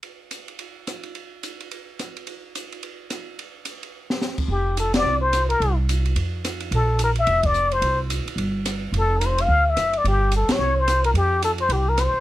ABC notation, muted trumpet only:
X:1
M:4/4
L:1/16
Q:"Swing" 1/4=216
K:F
V:1 name="Muted trumpet"
z16 | z16 | z16 | z16 |
G4 A2 d4 c4 B2- | B2 z12 z2 | A4 B2 e4 d4 c2- | c2 z12 z2 |
A3- A/2 B/2 c2 f4 e4 d2 | G4 A2 ^c4 =c4 B2 | G4 A2 c2 G2 B2 c4 |]